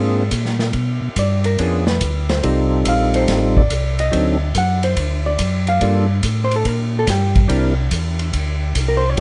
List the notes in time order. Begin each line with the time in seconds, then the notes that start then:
Already playing: G#2 A#3 C4 D4 F4 G#4
0.31 A#2, kick, hi-hat pedal, ride
0.45 snare
0.59 snare
0.73 B2, kick, ride
1.02 B2
1.16 G2 D5, kick, hi-hat pedal, ride
1.44 A#4, ride
1.58 F2 B3 C#4 D4 F4 G#4, kick, ride
1.87 B4, snare
2.01 D2, kick, hi-hat pedal, ride
2.29 C5, snare, ride
2.43 C2 G3 C4 D#4 F4 A4, kick, ride
2.85 A#1 F5, kick, hi-hat pedal, ride
3.14 C5, ride
3.28 A1, kick, snare, ride
3.57 D5, kick
3.70 C2, kick, hi-hat pedal, ride
3.99 D#5, ride
4.11 D2 F#3 C4 D4 D#4 A4, kick, ride
4.55 F#2 F#5, kick, hi-hat pedal, ride
4.83 C5, ride
4.97 D2, kick, ride
5.26 D5
5.39 F#2, kick, hi-hat pedal, ride
5.67 F5, ride
5.81 G2 G3 A#3 D4 F4 A4, kick, ride
6.23 A2, kick, hi-hat pedal, ride
6.45 C5
6.51 ride
6.56 A4
6.65 A#2 A#4, kick, ride
6.99 A4
7.07 G2 G4, kick, snare, hi-hat pedal, ride
7.35 kick, ride
7.48 C2 G3 C4 D4 E4 A#4, kick, ride
7.91 E2, kick, hi-hat pedal, ride
8.19 ride
8.33 D2, kick, ride
8.75 C2, kick, hi-hat pedal, ride
8.88 A#4
8.97 C5
9.10 C#5
9.17 A1 G3